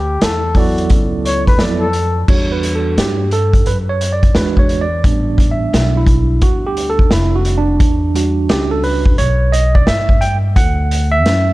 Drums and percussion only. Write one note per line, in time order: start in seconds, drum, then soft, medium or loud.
0.21 snare loud
0.21 closed hi-hat medium
0.55 kick medium
0.55 open hi-hat soft
0.78 closed hi-hat medium
0.90 kick loud
0.90 closed hi-hat medium
1.26 closed hi-hat medium
1.47 kick medium
1.47 closed hi-hat medium
1.59 snare loud
1.59 closed hi-hat medium
1.93 closed hi-hat medium
2.28 kick loud
2.28 crash loud
2.63 closed hi-hat medium
2.98 snare medium
2.98 closed hi-hat medium
3.31 closed hi-hat medium
3.53 kick medium
3.53 closed hi-hat medium
3.66 closed hi-hat medium
4.01 closed hi-hat medium
4.23 kick medium
4.23 closed hi-hat medium
4.35 snare loud
4.35 closed hi-hat medium
4.57 kick medium
4.69 closed hi-hat medium
5.04 kick loud
5.04 closed hi-hat loud
5.38 kick medium
5.38 closed hi-hat medium
5.74 snare loud
5.74 closed hi-hat medium
6.07 kick medium
6.07 closed hi-hat medium
6.42 kick loud
6.42 closed hi-hat medium
6.77 closed hi-hat medium
6.99 kick medium
7.11 snare loud
7.11 closed hi-hat medium
7.45 closed hi-hat medium
7.80 kick loud
7.80 closed hi-hat loud
8.16 closed hi-hat medium
8.49 snare loud
8.49 closed hi-hat medium
8.84 open hi-hat soft
9.06 kick loud
9.18 closed hi-hat medium
9.53 closed hi-hat medium
9.75 kick medium
9.87 snare loud
9.87 closed hi-hat medium
10.09 kick medium
10.22 closed hi-hat medium
10.56 kick loud
10.56 closed hi-hat loud
10.91 closed hi-hat medium
11.26 snare loud
11.26 closed hi-hat medium